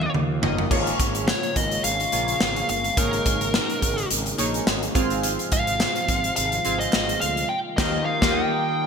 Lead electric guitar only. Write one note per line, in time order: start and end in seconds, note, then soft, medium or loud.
0.00 0.11 F5 medium
1.29 1.54 C#5 medium
1.57 1.84 D#5 medium
1.84 2.68 F5 loud
2.69 2.96 F5 medium
2.98 4.07 A#4 medium
5.53 6.35 F5 medium
6.36 6.79 F5 medium
6.79 7.18 D#5 medium
7.21 7.50 F5 medium
7.49 7.57 G5 loud
7.77 8.05 D#5 medium
8.05 8.32 F5 medium
8.34 8.87 G5 medium